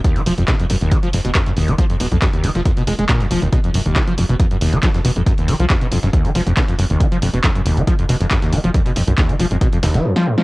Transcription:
<<
  \new Staff \with { instrumentName = "Acid bass" } { \clef bass \time 4/4 \tempo 4 = 138 ees,16 f16 f16 f,16 b,16 f,16 ges,16 ees,16 f16 f16 f,16 b,16 f,16 ges,16 ees,16 f16 | f16 f,16 b,16 f,16 ges,16 ees,16 f16 f16 f,16 b,16 aes16 aes16 bes,16 f,16 f16 ees,16 | b,16 f,16 ges,16 ees,16 f16 f16 f,16 b,16 f,16 ges,16 ees,16 f16 f16 f,16 b,16 f,16 | ges,16 ees,16 f16 f16 f,16 b,16 f,16 ges,16 ees,16 f16 f16 f,16 b,16 f,16 ges,16 ees,16 |
f16 f16 f,16 b,16 f,16 ges,16 ees,16 f16 f16 f,16 b,16 f,16 ges,16 ees,16 f16 f16 | f,16 b,16 f,16 ges,16 ees,16 f16 f16 f,16 b,16 f,16 ees,16 f16 f,16 f16 aes,16 f16 | }
  \new Staff \with { instrumentName = "Analog synth bass" } { \clef bass \time 4/4 r8 f,,16 f,,16 r8 f,,16 f,,16 r8 f,,16 f,,16 r8 f,,16 f,,16 | r8 f,,16 c,16 r8 f,,16 f,,16 r8 f,,16 f,,16 r8 f,,16 f,,16 | r8 f,,16 f,,16 r8 f,,16 f,,16 r8 f,,16 f,,16 r8 f,,16 f,,16 | r8 f,,16 c,16 r8 f,,16 f,,16 r8 f,,16 f,,16 r8 ges,,16 ges,,16 |
r8 f,,16 f,,16 r8 f,,16 f,,16 r8 f,,16 f,,16 r8 f,,16 f,,16 | r8 f,,16 c,16 r8 f,,16 f,,16 r8 f,,16 f,,16 r4 | }
  \new DrumStaff \with { instrumentName = "Drums" } \drummode { \time 4/4 <hh bd>16 hh16 <hh hho>16 hh16 <hc hh bd sn>16 hh16 <hh hho>16 hh16 <hh bd>16 hh16 <hh hho>16 hh16 <hc hh bd sn>16 <hh sn>16 <hh hho>16 hh16 | <hh bd>16 hh16 <hh hho>16 hh16 <hc hh bd sn>16 hh16 <hh hho>16 <hh sn>16 <hh bd>16 hh16 <hh hho sn>16 hh16 <hc hh bd sn>16 <hh sn>16 <hh hho>16 hh16 | <hh bd>16 hh16 <hh hho>16 hh16 <hc hh bd sn>16 hh16 <hh hho>16 hh16 <hh bd>16 hh16 <hh hho>16 hh16 <hc hh bd sn>16 <hh sn>16 <hh hho>16 hh16 | <hh bd>16 hh16 <hh hho>16 hh16 <hc hh bd sn>16 hh16 <hh hho>16 <hh sn>16 <hh bd>16 hh16 <hh hho sn>16 hh16 <hc hh bd sn>16 <hh sn>16 <hh hho>16 hh16 |
<hh bd>16 hh16 <hh hho>16 hh16 <hc hh bd sn>16 hh16 <hh hho>16 hh16 <hh bd>16 hh16 <hh hho>16 hh16 <hc hh bd sn>16 <hh sn>16 hho16 hh16 | <hh bd>16 hh16 <hh hho>16 hh16 <hc hh bd sn>16 hh16 hho16 hh16 <hh bd>16 hh16 <hh hho sn>16 <hh sn>16 r16 sn8 sn16 | }
>>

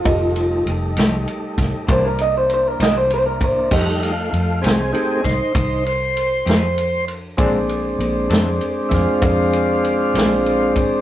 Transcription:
<<
  \new Staff \with { instrumentName = "Clean electric guitar" } { \time 12/8 \key f \mixolydian \tempo 4. = 65 f'4 r2 c''16 bes'16 ees''16 c''16 c''16 bes'16 ees''16 c''16 c''16 bes'16 c''8 | r1. | r1. | }
  \new Staff \with { instrumentName = "Upright piano" } { \time 12/8 \key f \mixolydian <g' a' ees''>2. <e' bes' d''>2. | <g' a' ees''>1. | <aes' c'' d''>1. | }
  \new Staff \with { instrumentName = "Tonewheel organ" } { \time 12/8 \key f \mixolydian << { <g a ees'>2. <e bes d'>2. | r8 <a e' f'>8 <a f'>8 <c' aes'>8 <c' aes'>8 <ees' c''>8 <ees' c''>8 c''2 r8 | r2 r8 <e' f'>2. c'8 | } \\ { r1. | <g a ees'>8 r4. <a ees' g'>8 r2. r8 | <aes c' d'>1. | } >> }
  \new Staff \with { instrumentName = "Clean electric guitar" } { \time 12/8 \key f \mixolydian r4. <f a ees' g'>8 r4 <c e bes d'>8 r4 <c e bes d'>8 r4 | <f a ees' g'>8 r4 <f a ees' g'>8 r2 r8 <f a ees' g'>8 r4 | <bes, aes c' d'>8 r4 <bes, aes c' d'>8 r2 r8 <bes, aes c' d'>8 r4 | }
  \new Staff \with { instrumentName = "Fingered electric bass" } { \clef bass \time 12/8 \key f \mixolydian f,,4 f,,8 c,8 r8 c,16 r16 c,4. c,4. | f,4 f,8 c,8 r8 c,16 r16 c,4. f,4. | bes,,4 bes,,8 f,8 r8 f,16 r16 f,4. bes,,4. | }
  \new DrumStaff \with { instrumentName = "Drums" } \drummode { \time 12/8 <bd cymr>8 cymr8 cymr8 <cymr sn>8 cymr8 <bd cymr sn>8 <bd cymr>8 cymr8 cymr8 <cymr sn>8 cymr8 <bd cymr>8 | <cymc bd>8 cymr8 cymr8 <cymr sn>8 cymr8 <bd cymr sn>8 <bd cymr>8 cymr8 cymr8 <cymr sn>8 cymr8 cymr8 | <bd cymr>8 cymr8 cymr8 <cymr sn>8 cymr8 <bd cymr sn>8 <bd cymr>8 cymr8 cymr8 <cymr sn>8 cymr8 <bd cymr>8 | }
>>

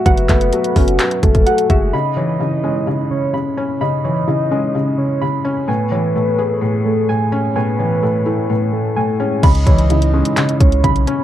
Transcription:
<<
  \new Staff \with { instrumentName = "Synth keys" } { \time 4/4 \key cis \minor \tempo 4 = 128 <a fis' e'' fis''>8 e''8 a'8 fis'4 a8 fis''8 e''8 | b''8 cis''8 e'8 cis'4 cis8 b''8 cis''8 | b''8 cis''8 e'8 cis'4 cis8 b''8 cis''8 | gis''8 cis''8 a'8 gis'4 a8 gis''8 cis''8 |
gis''8 cis''8 a'8 e'4 a8 gis''8 cis''8 | b''8 cis''8 e'8 cis'4 cis8 b''8 cis''8 | }
  \new Staff \with { instrumentName = "Soft synth lead" } { \time 4/4 \key cis \minor b'2~ b'8 a'4 gis'8 | dis''2~ dis''8 cis''8 r4 | dis''2~ dis''8 cis''8 r4 | b'2~ b'8 a'8 r4 |
b'2~ b'8 a'4 gis'8 | dis''2~ dis''8 cis''8 r4 | }
  \new Staff \with { instrumentName = "Felt piano" } { \clef bass \time 4/4 \key cis \minor <fis fis'>8 a8 fis8 cis'8 fis4 fis8 fis'8 | cis8 e8 cis8 gis8 cis4 cis8 cis'8 | cis8 e8 cis8 gis8 cis4 cis8 cis'8 | a,8 e8 a,8 gis'8 a,4 a,8 cis'8 |
a,8 e8 a,8 a8 a,4 a,8 cis'8 | cis8 e8 cis8 gis8 cis4 cis8 cis'8 | }
  \new Staff \with { instrumentName = "808-style bass" } { \clef bass \time 4/4 \key cis \minor fis,,8 fis,,8 r8 fis,,8 r8 fis,,8 r8 fis,,8 | r1 | r1 | r1 |
r1 | cis,8 cis,4~ cis,16 r8. cis,8 b,,8 r8 | }
  \new DrumStaff \with { instrumentName = "Drums" } \drummode { \time 4/4 <hh bd>16 hh16 <hc hh bd>16 hh16 hh16 hh16 <hho bd>16 hh16 <hc hh>16 hh16 <hh bd>16 <hh bd>16 hh16 hh16 <hh bd>8 | r4 r4 r4 r4 | r4 r4 r4 r4 | r4 r4 r4 r4 |
r4 r4 r4 r4 | <cymc hh bd>16 hh16 <hh bd>16 hh16 hh16 hh8 hh16 <hc hh>16 hh16 <hh bd>16 hh16 <hh bd>16 hh16 hh8 | }
>>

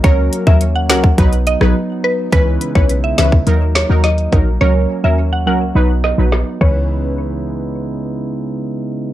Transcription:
<<
  \new Staff \with { instrumentName = "Synth pluck" } { \time 4/4 \key cis \dorian \tempo 4 = 105 cis''8 r16 e''16 r16 fis''16 fis''16 r8. dis''16 r8. b'16 r16 | b'8 r16 cis''16 r16 e''16 e''16 r8. cis''16 r16 dis''8. r16 | cis''8 r16 e''16 r16 fis''16 fis''16 r8. dis''16 r8. cis''8~ | cis''2. r4 | }
  \new Staff \with { instrumentName = "Synth stab" } { \time 4/4 \key cis \dorian <fis cis' ais'>8. <fis cis' ais'>16 r8 <fis cis' ais'>16 r16 <fis dis' b'>16 r8 <fis dis' b'>16 r4 | <e cis' b'>8. <e cis' b'>16 r8 <e cis' b'>16 r16 <fis dis' ais'>16 r8 <fis dis' ais'>16 r8 <fis dis' ais'>16 r16 | <fis cis' ais'>8. <fis cis' ais'>16 r8 <fis cis' ais'>16 r16 <fis dis' b'>16 r8 <fis dis' b'>16 r8 <e cis' b'>8~ | <e cis' b'>1 | }
  \new Staff \with { instrumentName = "Pipe organ" } { \time 4/4 \key cis \dorian cis'2 dis'2 | <cis gis e'>2 r2 | cis'2 dis'4. <cis gis b dis' e'>8~ | <cis gis b dis' e'>1 | }
  \new Staff \with { instrumentName = "Pipe organ" } { \time 4/4 \key cis \dorian << { ais2 b2 | dis'2 ais2~ | ais2 b4. r8 | r1 | } \\ { fis1 | b2 fis2~ | fis2.~ fis8 r8 | r1 | } >> }
  \new Staff \with { instrumentName = "808-style bass" } { \clef bass \time 4/4 \key cis \dorian cis,8 r16 dis,8. cis,8 b,,8. ais,,16 r4 | cis,8 r16 b,,8. cis,8 dis,8. dis,8. ais,,8 | cis,8 r16 dis,8. cis,8 b,,8. ais,,8 r16 cis,8~ | cis,1 | }
  \new DrumStaff \with { instrumentName = "Drums" } \drummode { \time 4/4 <hh bd>8 hh16 bd16 hh8 <hh sn>16 bd16 <hh bd>16 hh16 hh16 ss16 r4 | <hh bd>8 hh16 bd16 hh8 <hh sn>16 bd16 hh8 <hh sn>8 <hh sn>16 hh16 <hh bd>8 | r4 r4 r8 sn8 sn8 <cymc bd>8 | r4 r4 r4 r4 | }
>>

